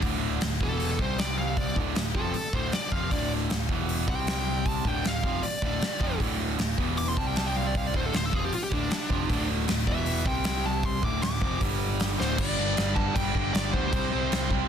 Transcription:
0.02 picked electric bass D1, overdriven electric guitar D2 A2 D3, kick, open hi-hat
0.41 picked electric bass D1, overdriven electric guitar D2 A2, snare, open hi-hat
0.61 picked electric bass E1, overdriven electric guitar E2 B2 E3, lead electric guitar A4, kick
0.80 open hi-hat
0.99 picked electric bass C2, overdriven electric guitar C3 G3 C4, lead electric guitar C5, kick
1.18 lead electric guitar D5, snare, open hi-hat
1.38 lead electric guitar F5
1.57 lead electric guitar D5, kick, open hi-hat
1.76 picked electric bass D1, overdriven electric guitar D2 A2 D3, kick
1.95 picked electric bass D1, overdriven electric guitar D2 A2, snare, open hi-hat
2.15 picked electric bass F1, overdriven electric guitar F2 C3 F3, lead electric guitar A4, kick
2.34 muted picked electric bass stroke, muted overdriven electric guitar stroke, open hi-hat
2.53 picked electric bass D1, overdriven electric guitar D2 A2 D3, lead electric guitar C5, kick
2.72 lead electric guitar D5, muted overdriven electric guitar stroke, muted picked electric bass stroke, snare, open hi-hat
2.92 picked electric bass F1, overdriven electric guitar F2 C3 F3, lead electric guitar F5, kick
3.11 picked electric bass D1, overdriven electric guitar D2 A2 D3, lead electric guitar D5, kick, open hi-hat
3.50 picked electric bass D1, overdriven electric guitar D2 A2, snare, open hi-hat
3.69 picked electric bass E1, overdriven electric guitar E2 B2 E3, kick
3.89 open hi-hat
4.07 picked electric bass C2, overdriven electric guitar C3 G3 C4, lead electric guitar G5, kick
4.27 snare, open hi-hat
4.66 lead electric guitar A5, kick, open hi-hat
4.85 picked electric bass D1, overdriven electric guitar D2 A2 D3, lead electric guitar G5, kick
5.04 picked electric bass D1, overdriven electric guitar D2 A2, lead electric guitar F5, snare, open hi-hat
5.23 picked electric bass F1, overdriven electric guitar F2 C3 F3, kick
5.43 lead electric guitar D5, muted overdriven electric guitar stroke, muted picked electric bass stroke, open hi-hat
5.62 picked electric bass D1, overdriven electric guitar D2 A2 D3, kick
5.81 muted overdriven electric guitar stroke, muted picked electric bass stroke, snare, open hi-hat
6.00 picked electric bass F1, overdriven electric guitar F2 C3 F3, kick
6.19 picked electric bass D1, overdriven electric guitar D2 A2 D3, kick, open hi-hat
6.58 picked electric bass D1, overdriven electric guitar D2 A2, snare, open hi-hat
6.78 picked electric bass E1, overdriven electric guitar E2 B2 E3, kick
6.97 lead electric guitar D6, open hi-hat
7.09 lead electric guitar C6
7.16 picked electric bass C2, overdriven electric guitar C3 G3 C4, lead electric guitar A5, kick
7.27 lead electric guitar G5
7.36 lead electric guitar A5, snare, open hi-hat
7.46 lead electric guitar G5
7.57 lead electric guitar F5
7.67 lead electric guitar D5
7.75 lead electric guitar F5, kick, open hi-hat
7.87 lead electric guitar D5
7.94 picked electric bass D1, overdriven electric guitar D2 A2 D3, lead electric guitar C5, kick
8.06 lead electric guitar A4
8.13 picked electric bass D1, overdriven electric guitar D2 A2, lead electric guitar C5, snare, open hi-hat
8.26 lead electric guitar A4
8.32 picked electric bass F1, overdriven electric guitar F2 C3 F3, lead electric guitar G#4, kick
8.45 lead electric guitar G4
8.52 lead electric guitar F4, muted overdriven electric guitar stroke, muted picked electric bass stroke, open hi-hat
8.64 lead electric guitar G4
8.71 picked electric bass D1, overdriven electric guitar D2 A2 D3, lead electric guitar D4, kick
8.90 muted overdriven electric guitar stroke, muted picked electric bass stroke, snare, open hi-hat
9.09 picked electric bass F1, overdriven electric guitar F2 C3 F3, kick
9.28 picked electric bass D1, overdriven electric guitar D2 A2 D3, kick, open hi-hat
9.68 picked electric bass D1, overdriven electric guitar D2 A2, snare, open hi-hat
9.87 picked electric bass E1, overdriven electric guitar E2 B2 E3, lead electric guitar E5, kick
10.06 open hi-hat
10.25 picked electric bass C2, overdriven electric guitar C3 G3 C4, lead electric guitar G5, kick
10.44 snare, open hi-hat
10.66 lead electric guitar A5
10.83 lead electric guitar C6, kick, open hi-hat
11.02 picked electric bass D1, overdriven electric guitar D2 A2 D3, lead electric guitar D6, kick
11.22 picked electric bass D1, overdriven electric guitar D2 A2, lead electric guitar D6, snare, open hi-hat
11.40 picked electric bass F1, overdriven electric guitar F2 C3 F3, kick
11.60 picked electric bass G1, overdriven electric guitar G2 D3 G3, kick, open hi-hat
12.00 snare, open hi-hat
12.19 picked electric bass D1, overdriven electric guitar D2 A2 D3, lead electric guitar C5, snare
12.38 picked electric bass G1, overdriven electric guitar G2 D3 G3, lead electric guitar D5, kick, crash
12.57 picked electric bass G1, overdriven electric guitar G2 D3 G3
12.75 picked electric bass G1, overdriven electric guitar G2 D3 G3, snare, crash
12.95 overdriven electric guitar G2 D3 G3, lead electric guitar A5, kick
13.14 picked electric bass G1, overdriven electric guitar G2 D3 G3, lead electric guitar G5, kick, crash
13.35 picked electric bass G1, overdriven electric guitar G2 D3 G3, kick
13.53 picked electric bass G1, overdriven electric guitar G2 D3 G3, lead electric guitar D5, snare, crash
13.73 picked electric bass D2, overdriven electric guitar G2 D3 G3, lead electric guitar C5, kick
13.92 picked electric bass C2, overdriven electric guitar C3 G3 C4, kick, crash
14.11 picked electric bass C2, overdriven electric guitar C3 G3 C4
14.30 picked electric bass C2, overdriven electric guitar C3 G3 C4, snare, crash
14.50 overdriven electric guitar C3 G3 C4, kick

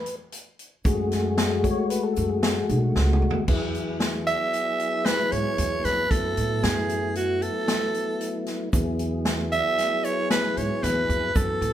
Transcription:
Already playing: tonewheel organ B4
0.06 closed hi-hat
0.32 closed hi-hat
0.59 closed hi-hat
0.84 upright bass F#2, tonewheel organ G#3 A3 F#4 G#4, kick, closed hi-hat, shaker
1.12 snare, closed hi-hat
1.38 snare, closed hi-hat, shaker
1.64 tonewheel organ C#5, kick, closed hi-hat, shaker
1.90 tonewheel organ B4, closed hi-hat
2.03 tonewheel organ A4
2.16 upright bass F#2, closed hi-hat, shaker
2.30 tonewheel organ G#4
2.43 snare, closed hi-hat, shaker
2.69 upright bass B1, closed hi-hat
2.96 upright bass C#2, snare
3.13 mid tom
3.22 upright bass D#2
3.31 floor tom
3.47 upright bass E2, tonewheel organ F#3 B3 E4 G#4, kick, crash
3.75 closed hi-hat
4.00 snare, closed hi-hat
4.27 soprano saxophone E5, closed hi-hat
4.53 closed hi-hat
4.80 closed hi-hat
5.06 soprano saxophone B4, snare, closed hi-hat
5.32 upright bass G#2, soprano saxophone C#5, closed hi-hat
5.58 upright bass E2, closed hi-hat
5.84 upright bass F2, soprano saxophone B4, snare, closed hi-hat
6.09 upright bass F#2, tonewheel organ F#3 A3 B3 E4, soprano saxophone A4, kick, closed hi-hat
6.37 upright bass A2, closed hi-hat
6.63 upright bass F#2, soprano saxophone G#4, snare, closed hi-hat
6.89 closed hi-hat
7.15 soprano saxophone F#4, closed hi-hat
7.42 soprano saxophone A4, closed hi-hat
7.68 snare, closed hi-hat
7.94 closed hi-hat
8.21 closed hi-hat
8.46 snare, closed hi-hat
8.72 upright bass E2, tonewheel organ F#3 B3 E4 G#4, kick, closed hi-hat, shaker
8.99 closed hi-hat
9.25 snare, closed hi-hat, shaker
9.52 soprano saxophone E5, closed hi-hat
9.78 snare, closed hi-hat
10.04 soprano saxophone C#5, closed hi-hat, shaker
10.30 soprano saxophone B4, snare, closed hi-hat
10.57 upright bass G#2, soprano saxophone C#5, closed hi-hat
10.83 upright bass E2, soprano saxophone B4, snare, closed hi-hat
11.09 upright bass F2, closed hi-hat, shaker
11.34 upright bass F#2, tonewheel organ E3 F#3 B3 A4, soprano saxophone A4, kick, closed hi-hat, shaker
11.61 upright bass A2, closed hi-hat

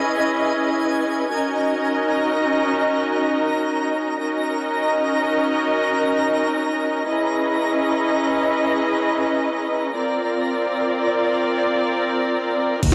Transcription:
Already playing: string section C#4 E4 G#4 B4 D#5, synth texture G#5
1.32 string section C#4 D#4 F#4 A#4 D#5, synth texture A#5
4.20 string section C#4 D#4 F#4 A#4 D#5
7.08 string section C#4 E4 G#4 B4 D#5
9.95 string section C4 F4 A#4 D5
12.83 detuned saw bass D#2, string section C#4 D#4 F#4 A#4 D#5, kick, closed hi-hat, crash, sub drop

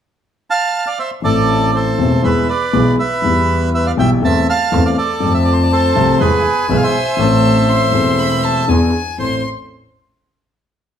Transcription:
0.50 bandoneon F5 A5
0.86 bandoneon D5 F5
0.99 bandoneon C5 E5
1.22 grand piano A1 A2 E3 A3 C4 A4, double bass A1, bandoneon A4 D5
1.75 bandoneon A4 C5
1.98 grand piano E1 E2 E3 A3 C4 A4, double bass E1
2.23 grand piano E2 E3 G#3 B3 G#4, double bass E2, bandoneon B4 E5
2.49 bandoneon B4 D5
2.73 grand piano B1 B2 E3 G#3 B3 G#4, double bass B1
2.99 bandoneon B4 E5
3.22 double bass E2, grand piano E2 E3 G3 B3
3.26 grand piano G4
3.74 bandoneon B4 E5
3.86 bandoneon D5 F5
3.97 grand piano B1 B2 E3 G3 B3 G4, double bass B1, bandoneon E5 G5
4.22 grand piano E2 E3 A3 C4 A4, double bass E2, bandoneon E5 A5
4.49 bandoneon F5 A5
4.72 grand piano E2 E3 A3 C4 A4, double bass E2
4.85 bandoneon D5 F5
4.97 bandoneon A4 D5
5.20 grand piano F2 F3 A3 C4 A4, double bass F2, violin A5
5.34 bandoneon E5
5.44 bandoneon D5
5.53 bandoneon C5
5.63 bandoneon D5
5.72 bandoneon A4 C5
5.96 grand piano C2 C3 F3 A3 C4 A4, double bass C2
6.20 grand piano E2 E3 G#3 B3 G#4, double bass E2, bandoneon G#4 B4, violin G#5
6.69 grand piano B1 B2 E3 G#3 B3 G#4, double bass B1, bandoneon B4 E5
6.76 bandoneon F5
6.84 bandoneon C5 E5
7.17 grand piano A1 A2 E3 A3 C4, double bass A1, violin A5
7.21 grand piano A4
7.69 violin C6
7.92 double bass E1, grand piano E1 E2 E3 A3 C4 A4
8.19 violin B5
8.44 violin A5
8.68 double bass E2, grand piano E2 E3 B3 D4 G#4, violin G#5
9.18 grand piano A1 C4 E4 A4, double bass A1, bandoneon C5, violin C6

